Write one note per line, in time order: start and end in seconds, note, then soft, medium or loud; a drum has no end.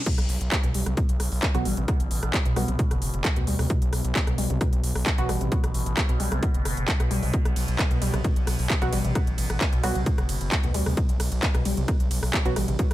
0.06 12.94 B2 medium
0.06 0.13 B2 medium
0.06 kick loud
0.06 closed hi-hat medium
0.06 crash loud
0.18 0.26 B1 medium
0.18 cross-stick medium
0.18 closed hi-hat medium
0.29 0.38 B1 loud
0.29 open hi-hat loud
0.41 0.49 B1 medium
0.41 closed hi-hat medium
0.52 kick loud
0.52 cross-stick medium
0.52 clap loud
0.52 closed hi-hat medium
0.64 0.72 C2 medium
0.64 0.69 B2 loud
0.64 closed hi-hat medium
0.74 0.83 B1 loud
0.74 0.77 G3 loud
0.74 open hi-hat loud
0.86 0.94 B1 medium
0.86 0.90 C3 medium
0.86 cross-stick medium
0.86 closed hi-hat medium
0.97 1.04 B2 medium
0.97 kick loud
0.97 closed hi-hat medium
1.09 1.17 B1 medium
1.09 closed hi-hat medium
1.20 1.29 B1 loud
1.20 cross-stick medium
1.20 open hi-hat loud
1.32 1.40 B1 medium
1.32 open hi-hat medium
1.43 kick loud
1.43 clap loud
1.43 closed hi-hat medium
1.55 1.63 A1 medium
1.55 1.60 B2 loud
1.55 1.67 F#3 medium
1.55 1.67 B3 medium
1.55 1.67 F#4 medium
1.55 cross-stick medium
1.55 closed hi-hat medium
1.65 1.74 A1 loud
1.65 1.68 G3 loud
1.65 open hi-hat loud
1.77 1.85 A1 medium
1.77 1.81 C3 medium
1.77 closed hi-hat medium
1.88 1.94 B2 medium
1.88 kick loud
1.88 cross-stick medium
1.88 closed hi-hat medium
2.00 2.08 A1 medium
2.00 closed hi-hat medium
2.11 2.20 A1 loud
2.11 open hi-hat loud
2.23 2.31 A1 medium
2.23 cross-stick medium
2.23 closed hi-hat medium
2.34 kick loud
2.34 clap loud
2.34 closed hi-hat medium
2.45 2.53 B1 medium
2.45 2.51 B2 loud
2.45 closed hi-hat medium
2.56 2.65 B1 loud
2.56 2.69 F#3 medium
2.56 2.59 G3 loud
2.56 2.69 B3 medium
2.56 2.69 F#4 medium
2.56 cross-stick medium
2.56 open hi-hat loud
2.68 2.76 B1 medium
2.68 2.72 C3 medium
2.68 closed hi-hat medium
2.79 2.85 B2 medium
2.79 kick loud
2.79 closed hi-hat medium
2.91 2.99 F#1 medium
2.91 cross-stick medium
2.91 closed hi-hat medium
3.02 3.11 F#1 loud
3.02 open hi-hat loud
3.14 3.22 F#1 medium
3.14 closed hi-hat medium
3.25 kick loud
3.25 cross-stick medium
3.25 clap loud
3.25 closed hi-hat medium
3.36 3.44 D2 medium
3.36 3.42 B2 loud
3.36 closed hi-hat medium
3.47 3.56 D2 loud
3.47 3.50 G3 loud
3.47 open hi-hat loud
3.59 3.67 D2 medium
3.59 3.63 C3 medium
3.59 cross-stick medium
3.59 open hi-hat medium
3.70 3.76 B2 medium
3.70 kick loud
3.70 closed hi-hat medium
3.82 3.90 B1 medium
3.82 closed hi-hat medium
3.93 4.01 B1 loud
3.93 cross-stick medium
3.93 open hi-hat loud
4.05 4.13 B1 medium
4.05 closed hi-hat medium
4.15 kick loud
4.15 clap loud
4.15 closed hi-hat medium
4.27 4.35 C2 medium
4.27 4.33 B2 loud
4.27 cross-stick medium
4.27 closed hi-hat medium
4.38 4.47 B1 loud
4.38 4.41 G3 loud
4.38 open hi-hat loud
4.50 4.58 B1 medium
4.50 4.54 C3 medium
4.50 closed hi-hat medium
4.61 4.67 B2 medium
4.61 kick loud
4.61 cross-stick medium
4.61 closed hi-hat medium
4.73 4.81 B1 medium
4.73 closed hi-hat medium
4.84 4.92 B1 loud
4.84 open hi-hat loud
4.95 5.03 B1 medium
4.95 cross-stick medium
4.95 open hi-hat medium
5.06 kick loud
5.06 clap loud
5.06 closed hi-hat medium
5.18 5.26 A1 medium
5.18 5.24 B2 loud
5.18 5.30 F#3 medium
5.18 5.30 B3 medium
5.18 5.30 F#4 medium
5.18 closed hi-hat medium
5.29 5.38 A1 loud
5.29 5.32 G3 loud
5.29 cross-stick medium
5.29 open hi-hat loud
5.41 5.49 A1 loud
5.41 5.45 C3 medium
5.41 closed hi-hat medium
5.52 5.58 B2 medium
5.52 kick loud
5.52 closed hi-hat medium
5.64 5.72 A1 medium
5.64 cross-stick medium
5.64 closed hi-hat medium
5.74 5.83 A1 loud
5.74 open hi-hat loud
5.86 5.94 A1 loud
5.86 closed hi-hat medium
5.97 kick loud
5.97 cross-stick medium
5.97 clap loud
5.97 closed hi-hat medium
6.09 6.17 B1 medium
6.09 6.15 B2 loud
6.09 closed hi-hat medium
6.20 6.29 B1 loud
6.20 6.22 G3 loud
6.20 open hi-hat loud
6.32 6.40 B1 loud
6.32 6.36 C3 medium
6.32 cross-stick medium
6.32 closed hi-hat medium
6.43 6.49 B2 medium
6.43 kick loud
6.43 closed hi-hat medium
6.54 6.63 F#1 medium
6.54 closed hi-hat medium
6.65 6.74 F#1 loud
6.65 cross-stick medium
6.65 open hi-hat loud
6.77 6.85 F#1 medium
6.77 closed hi-hat medium
6.88 kick loud
6.88 clap loud
6.88 closed hi-hat medium
7.00 7.08 B1 medium
7.00 7.06 B2 loud
7.00 cross-stick medium
7.00 closed hi-hat medium
7.11 7.20 B1 loud
7.11 7.13 G3 loud
7.11 open hi-hat loud
7.23 7.31 B1 medium
7.23 7.26 C3 medium
7.23 open hi-hat medium
7.33 7.40 B2 medium
7.33 kick loud
7.33 closed hi-hat medium
7.45 7.54 B1 medium
7.45 cross-stick medium
7.45 closed hi-hat soft
7.56 7.65 B1 loud
7.56 open hi-hat loud
7.56 ride medium
7.68 7.76 B1 medium
7.68 closed hi-hat medium
7.79 kick loud
7.79 cross-stick medium
7.79 clap loud
7.79 closed hi-hat medium
7.91 7.99 C2 medium
7.91 7.97 B2 loud
7.91 closed hi-hat medium
8.02 8.11 B1 loud
8.02 8.04 G3 loud
8.02 open hi-hat loud
8.02 ride medium
8.14 8.22 B1 medium
8.14 8.17 C3 medium
8.14 cross-stick medium
8.14 closed hi-hat soft
8.24 8.31 B2 medium
8.24 kick loud
8.24 closed hi-hat medium
8.36 8.44 B1 medium
8.36 closed hi-hat medium
8.47 8.56 B1 loud
8.47 cross-stick medium
8.47 open hi-hat loud
8.47 ride medium
8.59 8.67 B1 medium
8.59 open hi-hat medium
8.70 kick loud
8.70 clap loud
8.70 closed hi-hat medium
8.82 8.90 A1 medium
8.82 8.87 B2 loud
8.82 8.94 F#3 medium
8.82 8.94 B3 medium
8.82 8.94 F#4 medium
8.82 cross-stick medium
8.82 closed hi-hat medium
8.93 9.01 A1 loud
8.93 8.95 G3 loud
8.93 open hi-hat loud
8.93 ride medium
9.05 9.13 A1 medium
9.05 9.08 C3 medium
9.05 closed hi-hat medium
9.15 9.22 B2 medium
9.15 kick loud
9.15 cross-stick medium
9.15 closed hi-hat medium
9.27 9.35 A1 medium
9.27 closed hi-hat soft
9.38 9.47 A1 loud
9.38 open hi-hat loud
9.38 ride medium
9.50 9.58 A1 medium
9.50 cross-stick medium
9.50 closed hi-hat medium
9.61 kick loud
9.61 clap loud
9.61 closed hi-hat medium
9.73 9.81 B1 medium
9.73 9.78 B2 loud
9.73 closed hi-hat medium
9.83 9.92 B1 loud
9.83 9.97 F#3 medium
9.83 9.86 G3 loud
9.83 9.97 B3 medium
9.83 9.97 F#4 medium
9.83 cross-stick medium
9.83 open hi-hat loud
9.83 ride medium
9.95 10.03 B1 medium
9.95 9.99 C3 medium
9.95 closed hi-hat soft
10.06 10.12 B2 medium
10.06 kick loud
10.06 closed hi-hat medium
10.18 10.26 F#1 medium
10.18 cross-stick medium
10.18 closed hi-hat soft
10.29 10.38 F#1 loud
10.29 open hi-hat loud
10.29 ride medium
10.41 10.49 F#1 medium
10.41 closed hi-hat medium
10.52 kick loud
10.52 cross-stick medium
10.52 clap loud
10.52 closed hi-hat medium
10.64 10.72 D2 medium
10.64 10.69 B2 loud
10.64 closed hi-hat medium
10.74 10.83 D2 loud
10.74 10.77 G3 loud
10.74 open hi-hat loud
10.74 ride medium
10.86 10.94 D2 medium
10.86 10.90 C3 medium
10.86 cross-stick medium
10.86 open hi-hat medium
10.97 11.03 B2 medium
10.97 kick loud
10.97 closed hi-hat medium
11.09 11.17 B1 medium
11.09 closed hi-hat medium
11.20 11.29 B1 loud
11.20 cross-stick medium
11.20 open hi-hat loud
11.20 ride medium
11.32 11.40 B1 loud
11.32 closed hi-hat medium
11.43 kick loud
11.43 clap loud
11.43 closed hi-hat medium
11.54 11.63 C2 medium
11.54 11.60 B2 loud
11.54 cross-stick medium
11.54 closed hi-hat medium
11.65 11.74 B1 loud
11.65 11.68 G3 loud
11.65 open hi-hat loud
11.65 ride medium
11.77 11.85 B1 medium
11.77 11.81 C3 medium
11.77 closed hi-hat medium
11.88 11.94 B2 medium
11.88 kick loud
11.88 cross-stick medium
11.88 closed hi-hat medium
12.00 12.08 B1 medium
12.00 closed hi-hat medium
12.11 12.20 B1 loud
12.11 open hi-hat loud
12.11 ride medium
12.23 12.31 B1 medium
12.23 cross-stick medium
12.23 open hi-hat medium
12.34 kick loud
12.34 clap loud
12.34 closed hi-hat medium
12.45 12.53 A1 medium
12.45 12.51 B2 loud
12.45 12.58 F#3 medium
12.45 12.58 B3 medium
12.45 12.58 F#4 medium
12.45 closed hi-hat medium
12.56 12.65 A1 loud
12.56 12.59 G3 loud
12.56 cross-stick medium
12.56 open hi-hat loud
12.56 ride medium
12.68 12.76 A1 medium
12.68 12.72 C3 medium
12.68 closed hi-hat medium
12.79 12.85 B2 medium
12.79 kick loud
12.79 closed hi-hat medium
12.91 cross-stick medium
12.91 closed hi-hat medium